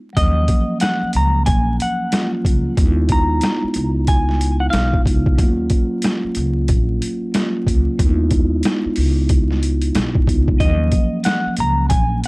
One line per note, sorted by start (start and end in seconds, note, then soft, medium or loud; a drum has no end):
0.13 0.47 D#2 loud
0.13 2.07 F#3 medium
0.13 2.08 A#3 medium
0.13 2.09 C#4 medium
0.13 0.78 D#5 loud
0.13 kick loud
0.13 closed hi-hat loud
0.19 2.10 F3 medium
0.48 kick loud
0.48 closed hi-hat medium
0.80 1.11 F#5 medium
0.80 cross-stick medium
0.80 snare loud
0.80 closed hi-hat loud
1.03 muted upright bass stroke soft
1.13 1.45 C#2 medium
1.13 1.45 A#5 medium
1.13 closed hi-hat medium
1.46 1.77 A#1 loud
1.46 1.76 G#5 medium
1.46 kick loud
1.46 closed hi-hat loud
1.80 2.31 F#5 medium
1.80 closed hi-hat medium
2.10 2.76 F#3 medium
2.10 2.77 A#3 medium
2.10 2.77 C#4 medium
2.10 2.78 F4 medium
2.10 cross-stick loud
2.10 snare loud
2.10 closed hi-hat medium
2.45 2.64 C#2 medium
2.45 kick loud
2.45 closed hi-hat medium
2.76 3.39 D#2 loud
2.76 5.01 G#3 medium
2.76 5.02 B3 medium
2.76 5.03 D#4 medium
2.76 kick loud
2.76 closed hi-hat loud
2.82 2.88 E4 medium
2.88 5.07 F4 medium
3.09 4.05 A#5 medium
3.09 kick loud
3.09 closed hi-hat medium
3.41 cross-stick medium
3.41 snare loud
3.41 closed hi-hat loud
3.64 muted upright bass stroke soft
3.74 4.69 C#2 medium
3.74 closed hi-hat medium
4.07 4.58 G#5 medium
4.07 kick loud
4.07 closed hi-hat loud
4.29 snare soft
4.41 closed hi-hat medium
4.60 4.70 F#5 medium
4.70 5.03 B1 loud
4.70 5.01 F5 medium
4.70 snare loud
4.70 closed hi-hat medium
4.75 cross-stick loud
4.93 kick loud
5.05 5.36 C#2 medium
5.05 5.38 G#3 medium
5.05 5.39 B3 medium
5.05 5.39 D#4 medium
5.05 5.39 F4 medium
5.05 kick loud
5.05 closed hi-hat medium
5.26 kick loud
5.35 5.68 D#2 loud
5.35 7.28 F#3 medium
5.35 7.29 A#3 medium
5.35 7.30 C#4 medium
5.35 kick loud
5.35 closed hi-hat medium
5.41 7.31 F4 medium
5.70 kick loud
5.70 closed hi-hat medium
6.02 cross-stick medium
6.02 snare loud
6.02 closed hi-hat loud
6.25 muted upright bass stroke soft
6.35 6.66 C#2 loud
6.35 closed hi-hat medium
6.68 6.99 A#1 loud
6.68 kick loud
6.68 closed hi-hat loud
7.02 closed hi-hat medium
7.31 7.98 F#3 medium
7.31 7.98 A#3 medium
7.31 7.99 C#4 medium
7.31 7.99 F4 medium
7.31 snare loud
7.31 closed hi-hat medium
7.36 cross-stick loud
7.67 7.86 C#2 medium
7.67 kick loud
7.67 closed hi-hat medium
7.98 8.61 D#2 loud
7.98 10.23 G#3 medium
7.98 10.24 B3 medium
7.98 10.25 D#4 medium
7.98 kick loud
7.98 closed hi-hat medium
8.04 8.10 E4 medium
8.10 10.29 F4 medium
8.31 kick loud
8.31 closed hi-hat medium
8.63 cross-stick medium
8.63 snare loud
8.63 closed hi-hat loud
8.85 muted upright bass stroke soft
8.96 9.91 C#2 medium
8.96 open hi-hat medium
9.29 kick loud
9.29 closed hi-hat loud
9.51 snare soft
9.63 closed hi-hat medium
9.82 closed hi-hat medium
9.95 10.25 B1 loud
9.95 cross-stick loud
9.95 snare loud
9.95 closed hi-hat medium
10.15 kick loud
10.27 10.58 C#2 medium
10.27 10.60 G#3 medium
10.27 10.60 B3 medium
10.27 10.61 D#4 medium
10.27 10.61 F4 medium
10.27 kick loud
10.27 closed hi-hat medium
10.48 kick loud
10.57 10.90 D#2 loud
10.57 12.28 F#3 medium
10.57 12.28 A#3 medium
10.57 12.28 C#4 medium
10.57 11.21 D#5 loud
10.57 kick loud
10.57 closed hi-hat medium
10.62 12.28 F3 medium
10.92 kick loud
10.92 closed hi-hat medium
11.24 11.54 F#5 medium
11.24 cross-stick medium
11.24 snare loud
11.24 closed hi-hat loud
11.46 muted upright bass stroke soft
11.57 11.88 C#2 loud
11.57 11.88 A#5 medium
11.57 closed hi-hat medium
11.90 12.21 A#1 loud
11.90 12.19 G#5 medium
11.90 kick loud
11.90 closed hi-hat loud
12.24 closed hi-hat medium